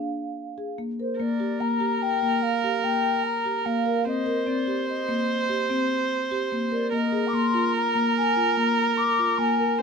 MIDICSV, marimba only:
0, 0, Header, 1, 2, 480
1, 0, Start_track
1, 0, Tempo, 409277
1, 1403, Time_signature, 7, 2, 24, 8
1, 11519, End_track
2, 0, Start_track
2, 0, Title_t, "Marimba"
2, 0, Program_c, 0, 12
2, 0, Note_on_c, 0, 62, 56
2, 207, Note_off_c, 0, 62, 0
2, 677, Note_on_c, 0, 68, 56
2, 803, Note_off_c, 0, 68, 0
2, 919, Note_on_c, 0, 58, 55
2, 1044, Note_off_c, 0, 58, 0
2, 1167, Note_on_c, 0, 70, 51
2, 1291, Note_off_c, 0, 70, 0
2, 1403, Note_on_c, 0, 58, 72
2, 1527, Note_off_c, 0, 58, 0
2, 1641, Note_on_c, 0, 67, 58
2, 1766, Note_off_c, 0, 67, 0
2, 1881, Note_on_c, 0, 58, 71
2, 2006, Note_off_c, 0, 58, 0
2, 2116, Note_on_c, 0, 67, 66
2, 2367, Note_off_c, 0, 67, 0
2, 2613, Note_on_c, 0, 58, 65
2, 2860, Note_off_c, 0, 58, 0
2, 3093, Note_on_c, 0, 67, 64
2, 3215, Note_off_c, 0, 67, 0
2, 3330, Note_on_c, 0, 58, 60
2, 3578, Note_off_c, 0, 58, 0
2, 4047, Note_on_c, 0, 67, 58
2, 4171, Note_off_c, 0, 67, 0
2, 4289, Note_on_c, 0, 58, 69
2, 4412, Note_off_c, 0, 58, 0
2, 4522, Note_on_c, 0, 70, 66
2, 4647, Note_off_c, 0, 70, 0
2, 4762, Note_on_c, 0, 60, 68
2, 4887, Note_off_c, 0, 60, 0
2, 4997, Note_on_c, 0, 70, 69
2, 5123, Note_off_c, 0, 70, 0
2, 5236, Note_on_c, 0, 60, 70
2, 5363, Note_off_c, 0, 60, 0
2, 5481, Note_on_c, 0, 67, 62
2, 5731, Note_off_c, 0, 67, 0
2, 5964, Note_on_c, 0, 58, 70
2, 6212, Note_off_c, 0, 58, 0
2, 6442, Note_on_c, 0, 67, 65
2, 6567, Note_off_c, 0, 67, 0
2, 6683, Note_on_c, 0, 60, 72
2, 6932, Note_off_c, 0, 60, 0
2, 7404, Note_on_c, 0, 67, 72
2, 7529, Note_off_c, 0, 67, 0
2, 7648, Note_on_c, 0, 58, 65
2, 7771, Note_off_c, 0, 58, 0
2, 7875, Note_on_c, 0, 70, 71
2, 8002, Note_off_c, 0, 70, 0
2, 8119, Note_on_c, 0, 58, 70
2, 8244, Note_off_c, 0, 58, 0
2, 8355, Note_on_c, 0, 68, 73
2, 8482, Note_off_c, 0, 68, 0
2, 8599, Note_on_c, 0, 58, 74
2, 8724, Note_off_c, 0, 58, 0
2, 8843, Note_on_c, 0, 65, 72
2, 9091, Note_off_c, 0, 65, 0
2, 9326, Note_on_c, 0, 58, 76
2, 9574, Note_off_c, 0, 58, 0
2, 9808, Note_on_c, 0, 65, 66
2, 9931, Note_off_c, 0, 65, 0
2, 10053, Note_on_c, 0, 58, 71
2, 10299, Note_off_c, 0, 58, 0
2, 10773, Note_on_c, 0, 65, 59
2, 10895, Note_off_c, 0, 65, 0
2, 11003, Note_on_c, 0, 58, 67
2, 11127, Note_off_c, 0, 58, 0
2, 11256, Note_on_c, 0, 70, 62
2, 11377, Note_off_c, 0, 70, 0
2, 11519, End_track
0, 0, End_of_file